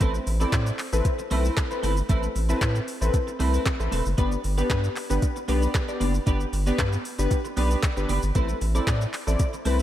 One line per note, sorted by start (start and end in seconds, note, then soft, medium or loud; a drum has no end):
0.00 0.19 A1 loud
0.00 0.15 A3 medium
0.00 0.22 C4 medium
0.00 0.14 C4 medium
0.00 0.22 E4 medium
0.00 0.14 E4 medium
0.00 0.22 A4 medium
0.00 0.22 B4 medium
0.00 0.13 B4 medium
0.00 kick loud
0.00 closed hi-hat medium
0.00 shaker medium
0.14 muted clean electric guitar stroke medium
0.14 shaker medium
0.26 0.46 A1 loud
0.26 muted clean electric guitar stroke soft
0.26 open hi-hat medium
0.26 shaker medium
0.40 0.51 A3 soft
0.40 0.69 C4 medium
0.40 0.51 C4 medium
0.40 0.51 E4 medium
0.40 0.69 E4 medium
0.40 0.69 A4 medium
0.40 0.51 B4 medium
0.40 0.69 D5 loud
0.40 shaker medium
0.52 0.71 A2 loud
0.52 muted clean electric guitar stroke soft
0.52 kick loud
0.52 snare medium
0.52 clap loud
0.52 closed hi-hat medium
0.52 shaker medium
0.67 muted clean electric guitar stroke soft
0.67 shaker medium
0.79 clap medium
0.79 open hi-hat medium
0.79 shaker medium
0.93 1.02 A1 loud
0.93 1.13 C4 medium
0.93 1.13 E4 medium
0.93 1.14 A4 medium
0.93 1.14 B4 loud
0.93 muted clean electric guitar stroke soft
0.93 shaker medium
1.05 muted clean electric guitar stroke soft
1.05 kick loud
1.05 closed hi-hat medium
1.05 shaker medium
1.19 muted clean electric guitar stroke soft
1.19 shaker medium
1.31 1.50 B1 medium
1.31 1.45 A3 medium
1.31 1.52 C4 medium
1.31 1.45 C4 medium
1.31 1.53 E4 medium
1.31 1.44 E4 medium
1.31 1.53 A4 medium
1.31 1.53 B4 loud
1.31 1.43 B4 medium
1.31 open hi-hat medium
1.31 shaker medium
1.44 1.56 A3 medium
1.44 1.56 C4 medium
1.44 1.55 E4 medium
1.44 1.55 B4 medium
1.44 shaker medium
1.57 kick loud
1.57 snare loud
1.57 clap loud
1.57 closed hi-hat medium
1.57 shaker medium
1.71 1.92 C4 medium
1.71 1.92 E4 medium
1.71 1.92 A4 medium
1.71 1.92 B4 loud
1.71 muted clean electric guitar stroke medium
1.71 shaker medium
1.83 2.02 G1 medium
1.83 1.98 A3 medium
1.83 1.97 C4 medium
1.83 1.96 E4 medium
1.83 1.96 B4 medium
1.83 open hi-hat medium
1.83 shaker medium
1.97 muted clean electric guitar stroke medium
1.97 shaker medium
2.09 2.28 A1 loud
2.09 2.24 A3 medium
2.09 2.31 C4 medium
2.09 2.23 C4 medium
2.09 2.31 E4 medium
2.09 2.22 E4 loud
2.09 2.31 A4 medium
2.09 2.31 B4 loud
2.09 2.22 B4 medium
2.09 kick loud
2.09 closed hi-hat medium
2.09 shaker medium
2.23 muted clean electric guitar stroke medium
2.23 shaker medium
2.35 2.54 A1 loud
2.35 muted clean electric guitar stroke soft
2.35 open hi-hat medium
2.35 shaker medium
2.49 2.60 A3 medium
2.49 2.77 C4 medium
2.49 2.60 C4 medium
2.49 2.77 E4 medium
2.49 2.60 E4 medium
2.49 2.77 A4 medium
2.49 2.60 B4 medium
2.49 2.77 B4 loud
2.49 shaker medium
2.61 2.80 A2 loud
2.61 muted clean electric guitar stroke soft
2.61 kick loud
2.61 snare medium
2.61 clap loud
2.61 closed hi-hat medium
2.61 shaker medium
2.75 muted clean electric guitar stroke soft
2.75 shaker medium
2.88 open hi-hat medium
2.88 shaker medium
3.01 3.10 A1 loud
3.01 3.22 C4 medium
3.01 3.22 E4 medium
3.01 3.22 A4 medium
3.01 3.22 B4 loud
3.01 muted clean electric guitar stroke soft
3.01 shaker medium
3.14 muted clean electric guitar stroke soft
3.14 kick loud
3.14 closed hi-hat medium
3.14 shaker medium
3.27 muted clean electric guitar stroke soft
3.27 shaker medium
3.39 3.59 C2 medium
3.39 3.54 A3 medium
3.39 3.61 C4 medium
3.39 3.53 C4 medium
3.39 3.61 E4 medium
3.39 3.53 E4 medium
3.39 3.61 A4 medium
3.39 3.61 B4 loud
3.39 3.52 B4 loud
3.39 open hi-hat medium
3.39 shaker medium
3.53 3.64 A3 medium
3.53 3.65 C4 medium
3.53 3.64 E4 medium
3.53 3.64 B4 medium
3.53 shaker medium
3.65 muted clean electric guitar stroke soft
3.65 kick loud
3.65 snare loud
3.65 clap loud
3.65 closed hi-hat medium
3.65 shaker medium
3.79 3.89 A1 medium
3.79 4.00 C4 medium
3.79 4.00 E4 medium
3.79 4.01 A4 medium
3.79 4.01 B4 loud
3.79 muted clean electric guitar stroke soft
3.79 shaker medium
3.91 4.02 E1 medium
3.91 4.07 A3 medium
3.91 4.06 C4 medium
3.91 4.05 E4 medium
3.91 4.04 B4 loud
3.91 open hi-hat medium
3.91 shaker medium
4.06 4.15 F#1 medium
4.06 muted clean electric guitar stroke soft
4.06 shaker medium
4.18 4.37 G1 loud
4.18 4.33 B3 medium
4.18 4.39 B3 medium
4.18 4.39 D4 medium
4.18 4.32 D4 medium
4.18 4.39 G4 medium
4.18 4.31 G4 loud
4.18 4.40 B4 loud
4.18 4.31 B4 loud
4.18 kick loud
4.18 closed hi-hat medium
4.18 shaker medium
4.32 muted clean electric guitar stroke medium
4.32 shaker medium
4.44 4.63 G1 loud
4.44 muted clean electric guitar stroke soft
4.44 open hi-hat medium
4.44 shaker medium
4.58 4.86 B3 medium
4.58 4.69 B3 medium
4.58 4.86 D4 medium
4.58 4.69 D4 medium
4.58 4.86 G4 medium
4.58 4.69 G4 medium
4.58 4.68 B4 medium
4.58 4.86 B4 loud
4.58 shaker medium
4.70 4.89 G2 loud
4.70 muted clean electric guitar stroke soft
4.70 kick loud
4.70 snare medium
4.70 clap loud
4.70 closed hi-hat medium
4.70 shaker medium
4.84 muted clean electric guitar stroke soft
4.84 shaker medium
4.96 clap medium
4.96 open hi-hat medium
4.96 shaker medium
5.10 5.19 G1 loud
5.10 5.31 B3 medium
5.10 5.31 D4 medium
5.10 5.31 G4 medium
5.10 5.31 B4 loud
5.10 muted clean electric guitar stroke medium
5.10 shaker medium
5.22 muted clean electric guitar stroke soft
5.22 kick loud
5.22 closed hi-hat medium
5.22 shaker medium
5.36 muted clean electric guitar stroke soft
5.36 shaker medium
5.48 5.67 B1 medium
5.48 5.63 B3 medium
5.48 5.70 B3 medium
5.48 5.70 D4 medium
5.48 5.62 D4 medium
5.48 5.70 G4 medium
5.48 5.61 G4 medium
5.48 5.70 B4 loud
5.48 5.61 B4 medium
5.48 open hi-hat medium
5.48 shaker medium
5.62 5.74 B3 medium
5.62 5.73 D4 medium
5.62 5.73 G4 medium
5.62 5.73 B4 medium
5.62 shaker medium
5.74 kick loud
5.74 snare loud
5.74 clap loud
5.74 closed hi-hat medium
5.74 shaker medium
5.88 6.09 B3 medium
5.88 6.09 D4 medium
5.88 6.09 G4 medium
5.88 6.09 D5 loud
5.88 muted clean electric guitar stroke medium
5.88 shaker medium
6.00 6.19 F#1 loud
6.00 6.15 B3 medium
6.00 6.14 D4 medium
6.00 6.14 G4 medium
6.00 6.13 B4 medium
6.00 open hi-hat medium
6.00 shaker medium
6.14 muted clean electric guitar stroke soft
6.14 shaker medium
6.26 6.46 G1 loud
6.26 6.42 B3 medium
6.26 6.48 B3 medium
6.26 6.48 D4 medium
6.26 6.40 D4 medium
6.26 6.48 G4 medium
6.26 6.40 G4 loud
6.26 6.48 B4 medium
6.26 6.39 B4 medium
6.26 kick loud
6.26 closed hi-hat medium
6.26 shaker medium
6.40 muted clean electric guitar stroke soft
6.40 shaker medium
6.53 6.72 G1 loud
6.53 muted clean electric guitar stroke soft
6.53 open hi-hat medium
6.53 shaker medium
6.66 6.95 B3 medium
6.66 6.78 B3 soft
6.66 6.95 D4 medium
6.66 6.78 D4 medium
6.66 6.95 G4 medium
6.66 6.77 G4 medium
6.66 6.77 B4 medium
6.66 6.95 B4 loud
6.66 shaker medium
6.79 6.97 G2 loud
6.79 muted clean electric guitar stroke soft
6.79 kick loud
6.79 snare medium
6.79 clap loud
6.79 closed hi-hat medium
6.79 shaker medium
6.93 muted clean electric guitar stroke medium
6.93 shaker medium
7.05 open hi-hat medium
7.05 shaker medium
7.19 7.28 G1 medium
7.19 7.40 B3 medium
7.19 7.40 D4 medium
7.19 7.40 G4 medium
7.19 7.40 B4 loud
7.19 muted clean electric guitar stroke soft
7.19 shaker medium
7.31 muted clean electric guitar stroke soft
7.31 kick loud
7.31 closed hi-hat medium
7.31 shaker medium
7.45 muted clean electric guitar stroke medium
7.45 shaker medium
7.57 7.76 B1 loud
7.57 7.71 B3 medium
7.57 7.78 B3 medium
7.57 7.78 D4 medium
7.57 7.71 D4 medium
7.57 7.79 G4 medium
7.57 7.70 G4 medium
7.57 7.79 B4 loud
7.57 7.69 B4 medium
7.57 open hi-hat medium
7.57 shaker medium
7.71 7.82 B3 medium
7.71 7.82 D4 medium
7.71 7.82 G4 medium
7.71 7.81 B4 medium
7.71 shaker medium
7.83 muted clean electric guitar stroke soft
7.83 kick loud
7.83 snare loud
7.83 clap loud
7.83 closed hi-hat medium
7.83 shaker medium
7.97 8.06 G1 medium
7.97 8.18 B3 medium
7.97 8.18 D4 medium
7.97 8.18 G4 medium
7.97 8.18 B4 loud
7.97 muted clean electric guitar stroke soft
7.97 shaker medium
8.09 8.19 F#1 medium
8.09 8.24 B3 medium
8.09 8.23 D4 medium
8.09 8.22 G4 medium
8.09 8.22 B4 medium
8.09 open hi-hat medium
8.09 shaker medium
8.23 8.32 G1 medium
8.23 muted clean electric guitar stroke medium
8.23 shaker medium
8.35 8.54 A1 loud
8.35 8.50 A3 medium
8.35 8.57 C4 medium
8.35 8.49 C4 medium
8.35 8.57 E4 medium
8.35 8.48 E4 medium
8.35 8.57 A4 medium
8.35 8.57 B4 loud
8.35 8.48 B4 medium
8.35 kick loud
8.35 closed hi-hat medium
8.35 shaker medium
8.49 muted clean electric guitar stroke soft
8.49 shaker medium
8.61 8.80 A1 loud
8.61 muted clean electric guitar stroke soft
8.61 open hi-hat medium
8.61 shaker medium
8.75 8.86 A3 medium
8.75 9.03 C4 medium
8.75 8.86 C4 medium
8.75 9.03 E4 medium
8.75 8.86 E4 medium
8.75 9.03 A4 medium
8.75 8.86 B4 medium
8.75 9.03 D5 loud
8.75 shaker medium
8.87 9.06 A2 loud
8.87 muted clean electric guitar stroke soft
8.87 kick loud
8.87 snare medium
8.87 clap loud
8.87 closed hi-hat medium
8.87 shaker medium
9.01 muted clean electric guitar stroke soft
9.01 shaker medium
9.13 clap medium
9.13 open hi-hat medium
9.13 shaker medium
9.27 9.36 A1 loud
9.27 9.48 C4 medium
9.27 9.48 E4 medium
9.27 9.48 A4 medium
9.27 9.48 D5 loud
9.27 muted clean electric guitar stroke soft
9.27 shaker medium
9.39 muted clean electric guitar stroke soft
9.39 kick loud
9.39 closed hi-hat medium
9.39 shaker medium
9.53 muted clean electric guitar stroke soft
9.53 shaker medium
9.65 9.82 C2 loud
9.65 9.80 A3 medium
9.65 9.82 C4 medium
9.65 9.79 C4 loud
9.65 9.82 E4 medium
9.65 9.79 E4 medium
9.65 9.82 A4 medium
9.65 9.82 B4 loud
9.65 9.78 B4 loud
9.65 open hi-hat medium
9.65 shaker medium
9.79 9.82 B4 medium